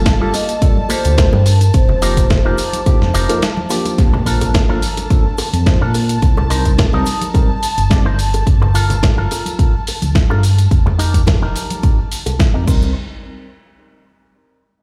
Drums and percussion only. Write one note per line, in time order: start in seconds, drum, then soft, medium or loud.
0.06 kick loud
0.06 snare loud
0.06 closed hi-hat medium
0.06 tambourine soft
0.06 cabasa soft
0.34 open hi-hat medium
0.34 tambourine medium
0.34 high bongo medium
0.34 cabasa medium
0.49 closed hi-hat medium
0.49 tambourine soft
0.49 cabasa medium
0.62 kick loud
0.62 closed hi-hat medium
0.62 tambourine soft
0.62 cabasa soft
0.77 high conga medium
0.89 open hi-hat loud
0.89 tambourine medium
0.89 high bongo soft
0.89 cabasa loud
1.04 closed hi-hat medium
1.04 tambourine soft
1.04 cabasa medium
1.18 kick loud
1.18 snare loud
1.18 closed hi-hat medium
1.18 tambourine soft
1.18 cabasa soft
1.33 high bongo medium
1.33 high conga medium
1.46 open hi-hat medium
1.46 tambourine medium
1.46 cabasa medium
1.61 closed hi-hat medium
1.61 tambourine soft
1.61 cabasa medium
1.74 kick loud
1.74 closed hi-hat medium
1.74 tambourine soft
1.74 cabasa soft
1.89 high bongo medium
1.89 low conga medium
2.02 open hi-hat loud
2.02 tambourine medium
2.02 cabasa loud
2.17 kick medium
2.17 closed hi-hat medium
2.17 tambourine soft
2.17 low conga medium
2.17 cabasa medium
2.30 kick loud
2.30 snare loud
2.30 closed hi-hat medium
2.30 tambourine soft
2.30 high bongo medium
2.30 cabasa soft
2.58 open hi-hat medium
2.58 tambourine medium
2.58 cabasa loud
2.73 closed hi-hat medium
2.73 tambourine soft
2.73 high conga medium
2.73 cabasa medium
2.86 kick loud
2.86 closed hi-hat medium
2.86 tambourine soft
2.86 high bongo medium
2.86 cabasa soft
3.02 snare soft
3.02 high conga medium
3.14 open hi-hat loud
3.14 tambourine medium
3.14 cabasa medium
3.29 closed hi-hat medium
3.29 tambourine soft
3.29 high bongo medium
3.29 cabasa soft
3.42 snare loud
3.42 closed hi-hat medium
3.42 tambourine soft
3.42 cabasa soft
3.57 high conga loud
3.70 open hi-hat medium
3.70 tambourine medium
3.70 cabasa medium
3.85 closed hi-hat medium
3.85 tambourine soft
3.85 high bongo medium
3.85 high conga medium
3.85 cabasa soft
3.98 kick loud
3.98 closed hi-hat medium
3.98 tambourine soft
3.98 high bongo soft
3.98 cabasa soft
4.14 low conga loud
4.26 open hi-hat loud
4.26 tambourine medium
4.26 cabasa loud
4.41 closed hi-hat medium
4.41 tambourine soft
4.41 high bongo medium
4.41 low conga medium
4.41 cabasa medium
4.54 kick loud
4.54 snare loud
4.54 closed hi-hat medium
4.54 tambourine soft
4.54 cabasa soft
4.68 high conga medium
4.82 open hi-hat medium
4.82 tambourine medium
4.82 cabasa medium
4.97 closed hi-hat medium
4.97 tambourine soft
4.97 high bongo medium
4.97 high conga medium
4.97 cabasa soft
5.10 kick loud
5.10 closed hi-hat medium
5.10 tambourine soft
5.10 cabasa soft
5.38 open hi-hat loud
5.38 tambourine medium
5.38 high bongo medium
5.38 cabasa medium
5.53 closed hi-hat medium
5.53 tambourine soft
5.53 high conga medium
5.53 cabasa soft
5.66 kick loud
5.66 snare loud
5.66 closed hi-hat medium
5.66 tambourine soft
5.66 cabasa soft
5.94 open hi-hat medium
5.94 tambourine medium
5.94 high bongo medium
5.94 cabasa medium
6.09 closed hi-hat medium
6.09 tambourine soft
6.09 cabasa medium
6.22 kick loud
6.22 closed hi-hat medium
6.22 tambourine soft
6.22 cabasa soft
6.37 high bongo medium
6.37 low conga loud
6.50 open hi-hat loud
6.50 tambourine medium
6.50 cabasa medium
6.65 kick medium
6.65 closed hi-hat medium
6.65 tambourine soft
6.65 low conga medium
6.65 cabasa soft
6.78 kick loud
6.78 snare loud
6.78 closed hi-hat medium
6.78 tambourine soft
6.78 cabasa soft
6.93 high bongo medium
6.93 high conga medium
7.06 open hi-hat medium
7.06 tambourine medium
7.06 cabasa medium
7.22 closed hi-hat medium
7.22 tambourine soft
7.22 high conga medium
7.22 cabasa medium
7.34 kick loud
7.34 closed hi-hat medium
7.34 tambourine soft
7.34 high bongo medium
7.34 cabasa soft
7.63 open hi-hat loud
7.63 tambourine medium
7.63 cabasa medium
7.77 closed hi-hat medium
7.77 tambourine soft
7.77 cabasa soft
7.91 kick loud
7.91 snare loud
7.91 closed hi-hat soft
7.91 tambourine soft
7.91 high bongo soft
7.91 cabasa soft
8.19 open hi-hat medium
8.19 tambourine medium
8.19 cabasa medium
8.34 closed hi-hat medium
8.34 tambourine soft
8.34 high bongo medium
8.34 cabasa soft
8.47 kick loud
8.47 closed hi-hat medium
8.47 tambourine soft
8.47 cabasa soft
8.62 low conga loud
8.75 open hi-hat loud
8.75 tambourine medium
8.75 cabasa medium
8.90 closed hi-hat medium
8.90 tambourine soft
8.90 high bongo soft
8.90 low conga medium
8.90 cabasa soft
9.03 kick loud
9.03 snare loud
9.03 closed hi-hat medium
9.03 tambourine soft
9.03 cabasa soft
9.18 high conga medium
9.31 open hi-hat medium
9.31 tambourine medium
9.31 high bongo medium
9.31 cabasa medium
9.46 closed hi-hat medium
9.46 tambourine soft
9.46 high conga medium
9.46 cabasa soft
9.59 kick loud
9.59 closed hi-hat medium
9.59 tambourine soft
9.59 cabasa soft
9.87 open hi-hat loud
9.87 tambourine medium
9.87 high bongo soft
9.87 cabasa medium
10.02 closed hi-hat medium
10.02 tambourine soft
10.02 high conga medium
10.02 cabasa soft
10.15 kick loud
10.15 snare loud
10.15 closed hi-hat soft
10.15 tambourine soft
10.15 cabasa soft
10.31 high bongo medium
10.43 open hi-hat medium
10.43 tambourine medium
10.43 cabasa medium
10.58 closed hi-hat medium
10.58 tambourine soft
10.58 cabasa soft
10.71 kick loud
10.71 closed hi-hat medium
10.71 tambourine soft
10.71 cabasa soft
10.87 high bongo medium
10.87 low conga loud
10.99 open hi-hat loud
10.99 tambourine medium
10.99 cabasa loud
11.14 kick medium
11.14 closed hi-hat medium
11.14 tambourine soft
11.14 low conga medium
11.14 cabasa soft
11.27 kick loud
11.27 snare loud
11.27 closed hi-hat soft
11.27 tambourine soft
11.27 high bongo medium
11.27 cabasa soft
11.42 high conga medium
11.56 open hi-hat medium
11.56 tambourine medium
11.56 cabasa loud
11.70 closed hi-hat medium
11.70 tambourine soft
11.70 high conga medium
11.70 cabasa soft
11.83 kick loud
11.83 closed hi-hat medium
11.83 tambourine soft
11.83 high bongo soft
11.83 cabasa soft
12.12 open hi-hat loud
12.12 tambourine medium
12.12 cabasa medium
12.26 closed hi-hat medium
12.26 tambourine soft
12.26 high bongo medium
12.26 cabasa soft
12.39 kick loud
12.39 snare loud
12.39 closed hi-hat soft
12.39 tambourine soft
12.39 cabasa soft
12.67 kick loud
12.67 crash medium
12.67 cabasa medium
12.82 high bongo medium
12.82 cabasa soft